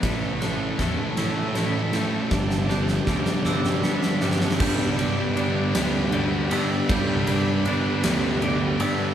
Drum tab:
CC |------------------------|------------------------|x-----------------------|------------------------|
RD |x---x---x---x---x---x---|------------------------|----x---x---x---x---x---|x---x---x---x---x---x---|
SD |o---o---o---o---o---o---|o-o-o-o-o-o-o-o-o-o-oooo|------------o-----------|------------o-----------|
BD |o-------o---------------|o-------o---------------|o-----------------------|o-----------------------|